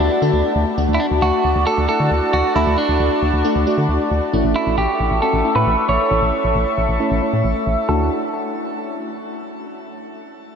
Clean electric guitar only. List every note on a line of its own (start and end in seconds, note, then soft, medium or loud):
0.00 0.52 D4 loud
0.94 1.00 E4 medium
1.00 1.06 D4 medium
1.22 1.66 F#4 loud
1.67 1.87 A4 loud
1.89 2.33 A4 loud
2.33 2.54 F#4 medium
2.56 2.76 E4 loud
2.78 4.07 D4 medium
4.56 4.77 E4 medium
4.78 5.22 G4 medium
5.22 5.55 A4 medium
5.56 5.89 B4 loud
5.89 7.63 C#5 loud
7.89 8.10 A4 medium